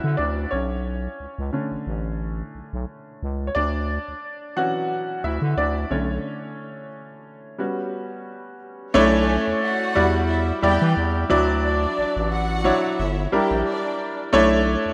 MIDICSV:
0, 0, Header, 1, 4, 480
1, 0, Start_track
1, 0, Tempo, 674157
1, 606, Time_signature, 4, 2, 24, 8
1, 10633, End_track
2, 0, Start_track
2, 0, Title_t, "String section"
2, 0, Program_c, 0, 48
2, 6368, Note_on_c, 0, 61, 117
2, 6368, Note_on_c, 0, 73, 119
2, 6820, Note_off_c, 0, 61, 0
2, 6820, Note_off_c, 0, 73, 0
2, 6853, Note_on_c, 0, 78, 117
2, 6854, Note_on_c, 0, 66, 107
2, 7302, Note_off_c, 0, 78, 0
2, 7303, Note_off_c, 0, 66, 0
2, 7324, Note_on_c, 0, 76, 87
2, 7326, Note_on_c, 0, 64, 83
2, 7518, Note_off_c, 0, 76, 0
2, 7519, Note_off_c, 0, 64, 0
2, 7569, Note_on_c, 0, 79, 119
2, 7571, Note_on_c, 0, 67, 106
2, 7761, Note_off_c, 0, 79, 0
2, 7762, Note_off_c, 0, 67, 0
2, 8291, Note_on_c, 0, 62, 104
2, 8292, Note_on_c, 0, 74, 121
2, 8740, Note_off_c, 0, 62, 0
2, 8740, Note_off_c, 0, 74, 0
2, 8764, Note_on_c, 0, 66, 93
2, 8765, Note_on_c, 0, 78, 115
2, 9216, Note_off_c, 0, 66, 0
2, 9217, Note_off_c, 0, 78, 0
2, 9243, Note_on_c, 0, 64, 83
2, 9243, Note_on_c, 0, 76, 91
2, 9436, Note_off_c, 0, 64, 0
2, 9436, Note_off_c, 0, 76, 0
2, 9488, Note_on_c, 0, 67, 97
2, 9489, Note_on_c, 0, 79, 95
2, 9679, Note_off_c, 0, 67, 0
2, 9679, Note_off_c, 0, 79, 0
2, 9720, Note_on_c, 0, 62, 102
2, 9720, Note_on_c, 0, 74, 118
2, 10069, Note_off_c, 0, 62, 0
2, 10069, Note_off_c, 0, 74, 0
2, 10633, End_track
3, 0, Start_track
3, 0, Title_t, "Grand piano"
3, 0, Program_c, 1, 0
3, 0, Control_c, 1, 64, 127
3, 0, Note_on_c, 1, 52, 40
3, 0, Note_on_c, 1, 54, 42
3, 0, Note_on_c, 1, 61, 49
3, 0, Note_on_c, 1, 62, 65
3, 0, Note_on_c, 1, 64, 66
3, 0, Note_on_c, 1, 66, 71
3, 0, Note_on_c, 1, 73, 56
3, 0, Note_on_c, 1, 74, 83
3, 0, Note_on_c, 1, 76, 81
3, 0, Note_on_c, 1, 78, 106
3, 113, Note_off_c, 1, 64, 0
3, 123, Note_off_c, 1, 74, 0
3, 123, Note_on_c, 1, 74, 72
3, 130, Note_off_c, 1, 76, 0
3, 131, Note_off_c, 1, 62, 0
3, 131, Note_on_c, 1, 62, 61
3, 352, Note_off_c, 1, 62, 0
3, 361, Note_off_c, 1, 73, 0
3, 361, Note_on_c, 1, 73, 70
3, 372, Note_off_c, 1, 61, 0
3, 372, Note_off_c, 1, 74, 0
3, 372, Note_on_c, 1, 61, 55
3, 374, Control_c, 1, 64, 0
3, 376, Note_off_c, 1, 78, 0
3, 377, Note_off_c, 1, 52, 0
3, 379, Note_off_c, 1, 54, 0
3, 380, Note_off_c, 1, 66, 0
3, 514, Control_c, 1, 64, 127
3, 1055, Note_off_c, 1, 73, 0
3, 1061, Note_off_c, 1, 61, 0
3, 1086, Note_on_c, 1, 50, 49
3, 1091, Note_on_c, 1, 57, 46
3, 1093, Note_on_c, 1, 61, 53
3, 1413, Note_off_c, 1, 50, 0
3, 1415, Note_off_c, 1, 57, 0
3, 1416, Note_off_c, 1, 61, 0
3, 2473, Note_on_c, 1, 73, 59
3, 2523, Note_off_c, 1, 73, 0
3, 2526, Note_on_c, 1, 74, 93
3, 2537, Note_on_c, 1, 62, 72
3, 2538, Control_c, 1, 64, 0
3, 2679, Control_c, 1, 64, 127
3, 3224, Note_off_c, 1, 62, 0
3, 3248, Note_on_c, 1, 52, 47
3, 3251, Note_on_c, 1, 78, 87
3, 3252, Note_on_c, 1, 54, 43
3, 3256, Note_on_c, 1, 61, 52
3, 3256, Note_on_c, 1, 66, 78
3, 3269, Note_off_c, 1, 74, 0
3, 3701, Note_off_c, 1, 78, 0
3, 3704, Note_off_c, 1, 66, 0
3, 3732, Note_on_c, 1, 76, 83
3, 3736, Note_on_c, 1, 64, 68
3, 3940, Note_off_c, 1, 52, 0
3, 3942, Note_off_c, 1, 54, 0
3, 3944, Note_off_c, 1, 61, 0
3, 3956, Note_off_c, 1, 64, 0
3, 3970, Note_on_c, 1, 74, 80
3, 3974, Note_on_c, 1, 62, 60
3, 3977, Note_off_c, 1, 76, 0
3, 4193, Note_off_c, 1, 74, 0
3, 4195, Note_off_c, 1, 62, 0
3, 4204, Note_on_c, 1, 50, 52
3, 4208, Note_on_c, 1, 73, 73
3, 4210, Note_on_c, 1, 57, 47
3, 4214, Note_on_c, 1, 61, 61
3, 4218, Control_c, 1, 64, 0
3, 4350, Control_c, 1, 64, 127
3, 4900, Note_off_c, 1, 73, 0
3, 4903, Note_off_c, 1, 61, 0
3, 5379, Note_off_c, 1, 50, 0
3, 5382, Note_off_c, 1, 57, 0
3, 5400, Note_on_c, 1, 55, 49
3, 5402, Note_on_c, 1, 59, 47
3, 5406, Note_on_c, 1, 61, 46
3, 5409, Note_on_c, 1, 66, 58
3, 5419, Control_c, 1, 64, 0
3, 5527, Control_c, 1, 64, 127
3, 6096, Note_off_c, 1, 55, 0
3, 6098, Note_off_c, 1, 59, 0
3, 6099, Note_off_c, 1, 61, 0
3, 6101, Note_off_c, 1, 66, 0
3, 6365, Note_on_c, 1, 57, 116
3, 6367, Note_on_c, 1, 62, 103
3, 6369, Note_on_c, 1, 64, 103
3, 6373, Note_on_c, 1, 73, 123
3, 6379, Control_c, 1, 64, 0
3, 6492, Control_c, 1, 64, 127
3, 7039, Note_off_c, 1, 57, 0
3, 7040, Note_off_c, 1, 62, 0
3, 7041, Note_off_c, 1, 64, 0
3, 7043, Note_off_c, 1, 73, 0
3, 7084, Note_on_c, 1, 55, 88
3, 7087, Note_on_c, 1, 64, 82
3, 7089, Note_on_c, 1, 66, 77
3, 7091, Note_on_c, 1, 74, 98
3, 7098, Control_c, 1, 64, 0
3, 7211, Control_c, 1, 64, 127
3, 7534, Note_off_c, 1, 55, 0
3, 7536, Note_off_c, 1, 64, 0
3, 7537, Note_off_c, 1, 66, 0
3, 7538, Note_off_c, 1, 74, 0
3, 7564, Note_on_c, 1, 55, 90
3, 7567, Note_on_c, 1, 64, 84
3, 7570, Note_on_c, 1, 67, 81
3, 7572, Note_on_c, 1, 74, 99
3, 8034, Note_off_c, 1, 64, 0
3, 8038, Note_off_c, 1, 74, 0
3, 8043, Note_on_c, 1, 54, 97
3, 8044, Note_on_c, 1, 62, 82
3, 8045, Note_on_c, 1, 64, 86
3, 8046, Note_off_c, 1, 55, 0
3, 8049, Note_off_c, 1, 67, 0
3, 8049, Note_on_c, 1, 74, 107
3, 8057, Control_c, 1, 64, 0
3, 8176, Control_c, 1, 64, 127
3, 8940, Note_off_c, 1, 54, 0
3, 8941, Note_off_c, 1, 62, 0
3, 8941, Note_off_c, 1, 64, 0
3, 8943, Note_off_c, 1, 74, 0
3, 9002, Note_on_c, 1, 54, 87
3, 9004, Note_on_c, 1, 62, 76
3, 9007, Note_on_c, 1, 64, 74
3, 9008, Note_on_c, 1, 73, 98
3, 9244, Note_off_c, 1, 54, 0
3, 9245, Note_off_c, 1, 62, 0
3, 9246, Note_off_c, 1, 64, 0
3, 9247, Note_off_c, 1, 73, 0
3, 9255, Control_c, 1, 64, 0
3, 9365, Control_c, 1, 64, 127
3, 9485, Note_on_c, 1, 55, 83
3, 9488, Note_on_c, 1, 62, 83
3, 9489, Note_on_c, 1, 64, 79
3, 9492, Note_on_c, 1, 70, 92
3, 10156, Note_off_c, 1, 55, 0
3, 10157, Note_off_c, 1, 62, 0
3, 10158, Note_off_c, 1, 64, 0
3, 10159, Note_off_c, 1, 70, 0
3, 10200, Note_on_c, 1, 57, 109
3, 10202, Note_on_c, 1, 62, 97
3, 10205, Note_on_c, 1, 64, 104
3, 10206, Note_on_c, 1, 73, 127
3, 10211, Control_c, 1, 64, 0
3, 10341, Control_c, 1, 64, 127
3, 10633, Note_off_c, 1, 57, 0
3, 10633, Note_off_c, 1, 62, 0
3, 10633, Note_off_c, 1, 64, 0
3, 10633, Note_off_c, 1, 73, 0
3, 10633, End_track
4, 0, Start_track
4, 0, Title_t, "FM bass"
4, 0, Program_c, 2, 39
4, 28, Note_on_c, 2, 50, 78
4, 114, Note_off_c, 2, 50, 0
4, 135, Note_on_c, 2, 38, 92
4, 331, Note_off_c, 2, 38, 0
4, 376, Note_on_c, 2, 35, 90
4, 770, Note_off_c, 2, 35, 0
4, 856, Note_on_c, 2, 37, 47
4, 905, Note_off_c, 2, 37, 0
4, 986, Note_on_c, 2, 37, 83
4, 1073, Note_off_c, 2, 37, 0
4, 1222, Note_on_c, 2, 33, 49
4, 1265, Note_off_c, 2, 33, 0
4, 1332, Note_on_c, 2, 33, 85
4, 1728, Note_off_c, 2, 33, 0
4, 1817, Note_on_c, 2, 35, 46
4, 1866, Note_off_c, 2, 35, 0
4, 1945, Note_on_c, 2, 35, 85
4, 2033, Note_off_c, 2, 35, 0
4, 2297, Note_on_c, 2, 37, 85
4, 2492, Note_off_c, 2, 37, 0
4, 2535, Note_on_c, 2, 38, 91
4, 2839, Note_off_c, 2, 38, 0
4, 2908, Note_on_c, 2, 38, 45
4, 2949, Note_off_c, 2, 38, 0
4, 3732, Note_on_c, 2, 38, 77
4, 3838, Note_off_c, 2, 38, 0
4, 3857, Note_on_c, 2, 50, 78
4, 3949, Note_off_c, 2, 50, 0
4, 3968, Note_on_c, 2, 38, 96
4, 4167, Note_off_c, 2, 38, 0
4, 4209, Note_on_c, 2, 35, 89
4, 4408, Note_off_c, 2, 35, 0
4, 6374, Note_on_c, 2, 35, 105
4, 6678, Note_off_c, 2, 35, 0
4, 6746, Note_on_c, 2, 40, 50
4, 6789, Note_off_c, 2, 40, 0
4, 7097, Note_on_c, 2, 40, 91
4, 7492, Note_off_c, 2, 40, 0
4, 7570, Note_on_c, 2, 40, 89
4, 7677, Note_off_c, 2, 40, 0
4, 7701, Note_on_c, 2, 52, 89
4, 7791, Note_off_c, 2, 52, 0
4, 7811, Note_on_c, 2, 40, 98
4, 8009, Note_off_c, 2, 40, 0
4, 8055, Note_on_c, 2, 38, 99
4, 8450, Note_off_c, 2, 38, 0
4, 8535, Note_on_c, 2, 33, 50
4, 8585, Note_off_c, 2, 33, 0
4, 8662, Note_on_c, 2, 33, 97
4, 9057, Note_off_c, 2, 33, 0
4, 9253, Note_on_c, 2, 31, 111
4, 9449, Note_off_c, 2, 31, 0
4, 9492, Note_on_c, 2, 34, 44
4, 9542, Note_off_c, 2, 34, 0
4, 9619, Note_on_c, 2, 34, 84
4, 9709, Note_off_c, 2, 34, 0
4, 10209, Note_on_c, 2, 35, 99
4, 10513, Note_off_c, 2, 35, 0
4, 10579, Note_on_c, 2, 40, 47
4, 10621, Note_off_c, 2, 40, 0
4, 10633, End_track
0, 0, End_of_file